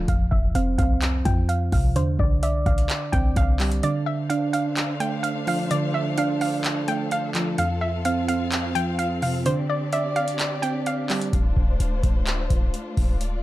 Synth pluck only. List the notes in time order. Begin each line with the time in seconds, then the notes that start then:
0.08 F5
0.31 E5
0.55 F5
0.78 F5
1.25 G5
1.49 F5
1.73 F5
1.96 C5
2.20 D5
2.43 E5
2.66 F5
3.12 G5
3.37 F5
3.83 D5
4.06 E5
4.30 F5
4.53 F5
5.00 G5
5.23 F5
5.48 F5
5.71 D5
5.94 E5
6.18 F5
6.41 F5
6.88 G5
7.12 F5
7.59 F5
7.81 E5
8.05 F5
8.28 F5
8.75 G5
8.99 F5
9.23 F5
9.46 C5
9.70 D5
9.93 E5
10.16 F5
10.62 G5
10.87 F5